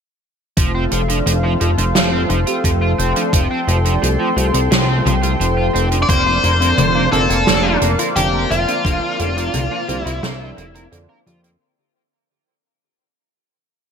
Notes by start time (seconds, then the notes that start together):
0.57 F1 F3 A3 C4 F4 A4 C5 F5 C6, kick, closed hi-hat
0.75 F3 A3 C4 F4
0.91 F1 F3, closed hi-hat
1.09 F3 A3 C4 D4, closed hi-hat
1.26 F1 F3, closed hi-hat
1.43 F3 A3 C4 F4
1.61 F1 F3 A3 C4 F4, closed hi-hat
1.78 F1 F3, closed hi-hat
1.95 F1 F3 A3 C4 F4, snare, closed hi-hat
2.12 F3 A3 C4 F4
2.30 F1 F3, closed hi-hat
2.47 F3 A3 C4 F4 G4, closed hi-hat
2.64 F1 F3 A3 C4 F4, kick, closed hi-hat
2.82 F4
2.99 F1 F3 A3 C4 G4, closed hi-hat
3.16 F3 A3 C4 D4, closed hi-hat
3.33 F1 F3 A3 C4 F4 G5, kick, closed hi-hat
3.51 F3 A3 C4 F4
3.68 F1 F3, closed hi-hat
3.85 F3 A3 C4 D4, closed hi-hat
4.02 C2 F3, closed hi-hat
4.19 F3 A3 C4 F4
4.37 C2 F3 A3 C4 F4, closed hi-hat
4.54 C2 F3, closed hi-hat
4.71 C2 F3 A3 C4 F4, snare, closed hi-hat
4.88 F3 A3 C4 F4
5.05 C2 F3, closed hi-hat, mid tom
5.23 F3 A3 C4 F4 G4, closed hi-hat
5.40 F1 F3 A3 C4 F4, closed hi-hat
5.57 F4
5.74 F1 F3 A3 C4 G4, closed hi-hat
5.92 F3 A3 C4 D4, closed hi-hat
6.02 D5 D6
6.09 F1 D3 F3 A#3 C4 D4 C5 F5 C6, kick, closed hi-hat
6.26 F3 A#3 C4 D4 F4
6.43 F1 D3 A#3, closed hi-hat
6.61 F3 A#3 C4 D4, closed hi-hat
6.78 F1 D3 A#3, closed hi-hat, mid tom
6.95 F3 A#3 C4 D4
7.12 F1 D3 F3 A#3 C4 D4 A4 A5, closed hi-hat
7.30 F1 A#3 C4, closed hi-hat
7.47 F1 D3 F3 A#3 C4 D4, snare, closed hi-hat
7.64 F3 A#3 C4 D4 F4
7.81 F1 D3 A#3, closed hi-hat
7.99 F3 A#3 C4 F4 A#4, closed hi-hat
8.16 F1 D3 F3 A#3 C4 D4 G4 G5, closed hi-hat
8.33 A#3 A#4
8.50 F1 D3 F3 A#3 C4 F4 F5, closed hi-hat
8.68 F3 A#3 C4 D4, closed hi-hat
8.85 F1 D3 F3 A#3 C4 D4, kick, closed hi-hat
9.02 F3 A#3 C4 D4 F4
9.19 F1 D3 A#3, closed hi-hat
9.37 F3 A#3 C4 D4, closed hi-hat
9.54 C2 D3 A#3, closed hi-hat, mid tom
9.71 F3 A#3 C4 D4
9.88 C2 D3 F3 A#3 C4 D4, closed hi-hat
9.99 E4 E5
10.06 C2 A#3 F4, closed hi-hat
10.23 C2 D3 F3 A#3 C4 D4, snare, closed hi-hat
10.40 F3 A#3 C4 D4 F4
10.57 F1 D3 A#3, closed hi-hat
10.75 F3 A#3 C4 D4 A#4, closed hi-hat
10.92 F2 D3 F3 A#3 C4 D4, closed hi-hat
11.09 A#3 A#4
11.26 F2 D3 F3 A#3 C4 F4 G4, closed hi-hat
11.44 A#3 C4, closed hi-hat